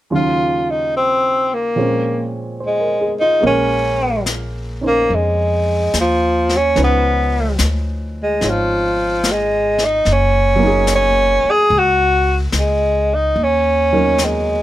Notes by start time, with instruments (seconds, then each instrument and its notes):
0.10 grand piano D#2 C#3 D#3 F#3 F4
0.15 tenor saxophone F4
0.70 tenor saxophone D#4
0.97 tenor saxophone C4
1.54 tenor saxophone A#3
1.76 grand piano A#2 F3 G#3 C4 C#4
2.60 grand piano C5
2.66 tenor saxophone G#3
2.80 grand piano A#4
3.01 grand piano G#4
3.20 tenor saxophone D#4, grand piano F4
3.41 upright bass A#1, grand piano G#3 A#3 C#4, brush sweep
3.45 tenor saxophone C#4, grand piano A#4
4.26 snare, hi-hat pedal
4.81 grand piano C#4 D#4 C5
4.87 tenor saxophone A#3
5.10 upright bass F2, brush sweep
5.15 tenor saxophone G#3
5.94 upright bass D#2, snare, hi-hat pedal
6.00 tenor saxophone F3
6.49 snare
6.57 tenor saxophone C#4
6.75 upright bass C#2, grand piano F3 C#4 D#4 B4, brush sweep, snare
6.84 tenor saxophone B3
7.59 upright bass D2, snare, hi-hat pedal
8.23 tenor saxophone G#3
8.40 upright bass G#1, grand piano D#4 F4 C#5, brush sweep, snare
8.50 tenor saxophone F3
9.24 snare, hi-hat pedal
9.32 tenor saxophone G#3
9.78 snare
9.85 tenor saxophone D#4
10.05 upright bass F#1, brush sweep, snare
10.12 tenor saxophone C#4
10.56 grand piano F#3 A#3
10.63 grand piano D#4
10.67 grand piano G#4
10.87 snare, hi-hat pedal
10.95 tenor saxophone C#4
11.44 muted upright bass stroke
11.51 tenor saxophone G#4
11.70 upright bass C#2, brush sweep
11.78 tenor saxophone F#4
12.52 upright bass C#2, snare, hi-hat pedal
12.59 tenor saxophone G#3
13.15 tenor saxophone D#4
13.35 upright bass D#2, brush sweep
13.43 tenor saxophone C#4
13.93 grand piano F#3 C#4 D#4 A#4
14.18 snare, hi-hat pedal
14.24 tenor saxophone G#3